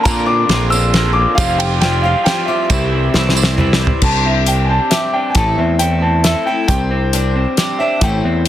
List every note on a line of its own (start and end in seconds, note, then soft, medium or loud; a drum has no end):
0.00 0.21 A#4 medium
0.00 0.21 C5 medium
0.00 0.21 D5 medium
0.00 0.25 A#5 loud
0.05 0.44 A#2 loud
0.05 0.50 A#2 medium
0.05 0.50 D3 medium
0.05 0.50 F3 medium
0.05 0.29 A#3 loud
0.05 0.51 C4 medium
0.05 0.51 D4 medium
0.05 0.27 F4 loud
0.05 0.51 A#4 medium
0.05 kick loud
0.05 ride medium
0.05 tambourine medium
0.26 0.51 C4 medium
0.26 0.51 F4 medium
0.26 0.73 D6 loud
0.30 0.49 A#3 medium
0.49 1.25 A#1 loud
0.49 0.93 D3 medium
0.49 0.72 F3 medium
0.49 0.73 A#3 medium
0.49 0.73 C4 medium
0.49 0.72 D4 medium
0.49 0.69 F4 medium
0.49 0.80 A#4 medium
0.49 0.71 A#4 medium
0.49 0.80 C5 medium
0.49 0.80 F5 medium
0.49 snare medium
0.49 ride medium
0.70 0.94 A#3 medium
0.70 0.94 C4 medium
0.70 0.95 D4 soft
0.70 0.95 F4 medium
0.70 0.94 A#4 medium
0.70 1.17 E6 loud
0.70 tambourine medium
0.75 0.93 F3 soft
0.83 tambourine soft
0.93 1.37 A#2 loud
0.93 1.37 D3 loud
0.93 1.37 F3 medium
0.93 1.18 A#3 loud
0.93 1.38 C4 medium
0.93 1.39 D4 medium
0.93 1.14 F4 loud
0.93 1.38 A#4 medium
0.93 1.39 A#4 medium
0.93 1.37 C5 medium
0.93 1.39 D5 medium
0.93 snare medium
0.93 ride medium
1.13 1.37 F4 medium
1.13 1.35 D6 loud
1.17 1.38 A#3 medium
1.17 1.39 C4 medium
1.35 2.14 F1 loud
1.35 1.81 F3 medium
1.35 1.63 G3 medium
1.35 1.83 C4 medium
1.35 1.73 G4 medium
1.35 1.74 C5 medium
1.35 1.59 F5 medium
1.35 kick loud
1.35 ride medium
1.35 tambourine medium
1.39 1.82 F4 medium
1.39 1.84 G4 medium
1.39 1.74 F5 medium
1.58 1.84 C4 medium
1.58 1.84 F4 medium
1.58 1.79 G5 medium
1.58 ride medium
1.63 1.83 G3 medium
1.80 2.04 F3 medium
1.80 2.06 G3 medium
1.80 2.04 C4 medium
1.80 2.04 F4 medium
1.80 2.12 G4 medium
1.80 2.12 C5 medium
1.80 2.12 D5 medium
1.80 2.04 G5 loud
1.80 snare medium
1.80 ride medium
1.84 2.02 G4 medium
2.02 2.25 C4 soft
2.02 2.26 F4 soft
2.02 2.26 G4 medium
2.02 2.26 F5 medium
2.06 2.26 G3 medium
2.24 2.48 F3 medium
2.24 2.50 G3 medium
2.24 2.48 C4 medium
2.24 2.48 F4 medium
2.24 2.69 G4 medium
2.24 2.47 G4 medium
2.24 2.69 C5 medium
2.24 2.71 F5 medium
2.24 2.48 G5 medium
2.24 snare medium
2.24 ride medium
2.46 2.71 F4 soft
2.46 2.70 G4 medium
2.46 3.53 E5 medium
2.50 2.70 G3 medium
2.50 2.70 C4 soft
2.70 3.08 C2 medium
2.70 3.14 C3 medium
2.70 3.12 E3 loud
2.70 3.13 G3 medium
2.70 3.14 C4 medium
2.70 3.14 E4 medium
2.70 3.06 G4 medium
2.70 3.15 G4 medium
2.70 3.06 C5 medium
2.70 3.06 E5 medium
2.70 kick loud
2.70 ride medium
2.70 tambourine medium
2.91 3.13 G3 medium
2.91 3.15 C4 medium
2.91 3.16 E4 medium
3.13 3.91 C2 loud
3.13 3.57 E3 medium
3.13 3.36 G3 medium
3.13 3.37 C4 medium
3.13 3.36 E4 medium
3.13 3.44 G4 medium
3.13 3.35 G4 medium
3.13 3.44 C5 medium
3.13 3.45 E5 medium
3.13 snare medium
3.29 snare medium
3.36 3.58 G3 medium
3.36 3.58 C4 soft
3.36 3.58 E4 soft
3.36 3.58 G4 medium
3.36 tambourine loud
3.43 snare medium
3.56 4.00 C3 medium
3.56 4.01 E3 loud
3.56 3.81 G3 medium
3.56 3.81 C4 medium
3.56 3.79 E4 medium
3.56 4.02 G4 medium
3.56 3.78 G4 medium
3.56 4.03 C5 medium
3.56 4.03 E5 medium
3.56 mid tom medium
3.73 snare loud
3.80 4.03 G3 medium
3.80 4.02 C4 soft
3.80 4.03 E4 medium
3.80 4.02 G4 medium
3.87 floor tom loud
4.02 4.78 C2 medium
4.02 4.47 C3 medium
4.02 4.45 G3 medium
4.02 4.47 C4 medium
4.02 4.46 D4 medium
4.02 4.48 G4 medium
4.02 4.24 A5 medium
4.02 kick loud
4.02 crash loud
4.25 4.69 C4 medium
4.25 4.47 E5 medium
4.46 4.90 G3 medium
4.46 4.91 C4 medium
4.46 4.91 D4 medium
4.46 4.92 G4 medium
4.46 4.69 G5 medium
4.46 closed hi-hat medium
4.65 4.68 G#5 medium
4.69 5.58 C4 medium
4.69 4.91 A5 medium
4.90 5.35 G3 medium
4.90 5.36 C4 medium
4.90 5.36 D4 medium
4.90 5.36 G4 medium
4.90 5.12 E5 medium
4.90 snare medium
4.90 closed hi-hat medium
5.13 5.36 D4 medium
5.13 5.35 G5 medium
5.30 5.33 G#5 medium
5.34 5.55 A1 medium
5.34 5.80 A2 medium
5.34 5.80 E3 medium
5.34 5.79 A3 medium
5.34 5.80 C4 medium
5.34 5.80 E4 medium
5.34 5.81 A4 medium
5.34 5.56 A5 medium
5.34 kick loud
5.34 closed hi-hat medium
5.56 6.34 E2 medium
5.56 6.02 C4 medium
5.56 5.79 E5 medium
5.79 6.23 A3 medium
5.79 6.24 C4 medium
5.79 6.25 E4 medium
5.79 6.25 A4 medium
5.79 6.01 G5 medium
5.79 closed hi-hat medium
6.01 6.90 C4 medium
6.01 6.23 A5 medium
6.23 6.47 A3 medium
6.23 6.47 C4 medium
6.23 6.47 E4 medium
6.23 6.46 A4 medium
6.23 6.45 E5 medium
6.23 snare medium
6.23 closed hi-hat medium
6.46 6.69 A3 soft
6.46 6.69 C4 soft
6.46 6.69 E4 soft
6.46 6.69 A4 soft
6.46 6.66 G5 medium
6.68 7.45 C2 medium
6.68 7.13 C3 medium
6.68 7.12 G3 medium
6.68 7.14 C4 medium
6.68 7.14 D4 medium
6.68 7.15 C5 medium
6.68 7.46 G5 loud
6.68 kick loud
6.68 closed hi-hat medium
6.91 7.35 C4 medium
7.13 7.57 G3 medium
7.13 7.58 C4 medium
7.13 7.58 D4 medium
7.13 7.60 C5 medium
7.13 closed hi-hat medium
7.36 8.25 C4 medium
7.57 7.80 G3 medium
7.57 7.80 C4 medium
7.57 7.80 D4 medium
7.57 8.02 G4 medium
7.57 7.79 C5 medium
7.57 snare medium
7.57 closed hi-hat medium
7.79 8.02 C4 soft
7.79 8.03 D4 soft
7.79 8.02 C5 soft
7.79 8.01 E5 medium
7.99 8.21 A1 medium
7.99 8.46 A2 medium
7.99 8.47 E3 medium
7.99 8.45 A3 medium
7.99 8.47 C4 medium
7.99 8.02 F#5 medium
7.99 8.48 G5 medium
7.99 kick loud
7.99 closed hi-hat medium
8.03 8.47 E4 medium
8.03 8.48 C5 medium
8.24 8.48 E2 medium
8.24 8.48 C4 medium